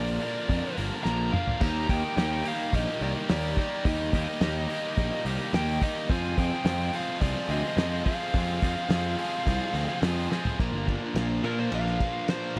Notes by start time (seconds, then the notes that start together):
Already playing: A#1 A#2 D3 F3 A#3 D4 F4 A#4 D5
0.20 A#2 D3 F3 A#3 D4 A#4, open hi-hat
0.47 F2 A#2 D3 F3 A#3 D4 A#4, kick, open hi-hat
0.75 G1 A#2 D3 F3 A#3 D4 A#4, open hi-hat
1.03 A#1 A#2 D3 F3 A#3 D4 A#4 A#5, snare
1.32 A#2 D3 F3 A#3 D4 A#4 F5, mid tom
1.47 floor tom
1.59 D#2 D#3 G3 A#3 D#4 G4 A#4 A#5, kick, open hi-hat, crash
1.88 D#2 D#3 G3 A#3 D#4 G4 G5, kick, open hi-hat
2.16 D#2 D#3 G3 A#3 D#4 G4, snare, open hi-hat
2.44 D#3 G3 A#3 D#4 G4 F5, open hi-hat
2.72 A#1 D#3 G3 A#3 D#4 G4 D#5, kick, open hi-hat
3.01 C2 D#3 G3 A#3 D#4 G4 D5, open hi-hat
3.29 D#2 D#3 G3 A#3 D#4 G4 D5, snare, open hi-hat
3.56 D#3 G3 A#3 D#4 G4 D5, kick, open hi-hat
3.85 D#2 D#3 G3 A#3 D#4 G4 A#4 D#5, kick, open hi-hat
4.13 D#2 D#3 G3 A#3 D#4 G4 D#5, kick, open hi-hat
4.41 D#2 D#3 G3 A#3 D#4 G4, snare, open hi-hat
4.69 D#3 G3 A#3 D#4 G4, open hi-hat
4.97 A#1 D#3 G3 A#3 D#4 G4, kick, open hi-hat
5.25 C2 D#3 G3 A#3 D#4 G4, open hi-hat
5.53 D#2 D#3 G3 A#3 D#4 G4 G5, snare, open hi-hat
5.81 D#3 G3 A#3 D#4 G4 D#5, kick, open hi-hat
6.08 F2 C3 F3 G#3 C4 F4 G#4 C5 G#5, kick, open hi-hat
6.36 F2 C3 F3 G#3 C4 F4 G#4 G5, kick, open hi-hat
6.64 F2 C3 F3 G#3 C4 F4 G#4, snare, open hi-hat
6.92 F2 C3 F3 G#3 C4 F4 G#4 F5, open hi-hat
7.21 C2 F2 C3 F3 G#3 C4 F4 G#4 D5, kick, open hi-hat
7.49 D2 F2 C3 F3 G#3 C4 F4 G#4 D#5, open hi-hat
7.77 F2 C3 F3 G#3 C4 F4 G#4, snare, open hi-hat
8.06 F2 C3 F3 G#3 C4 F4 G#4 F5, kick, open hi-hat
8.33 F2 C3 F3 G#3 C4 F4 G#4 C5, kick, open hi-hat
8.62 F2 C3 F3 G#3 C4 F4 G#4, kick, open hi-hat
8.89 F2 C3 F3 G#3 C4 F4 G#4, snare, open hi-hat
9.18 F2 C3 F3 G#3 C4 F4 G#4, open hi-hat
9.45 C2 F2 C3 F3 G#3 C4 F4 G#4, kick, open hi-hat
9.74 D2 F2 C3 F3 G#3 C4 F4 G#4, open hi-hat
10.02 F2 C3 F3 G#3 C4 F4 G#4, snare, open hi-hat
10.29 F2 C3 F3 G#3 C4 F4 G#4, snare
10.45 floor tom
10.59 A#1 A#2 F3 A#3 D4 F4 A#4 C5, kick, crash
10.72 G1
10.87 D4, kick, ride
11.15 A#1 F4, snare, ride
11.43 A#2 F3 A#3 D4 F4 A#4, ride
11.47 A#2
11.60 C5
11.71 A#1 D4 F5, ride
11.87 snare
12.00 C5, kick, ride
12.28 F4 C5, snare, ride
12.56 C5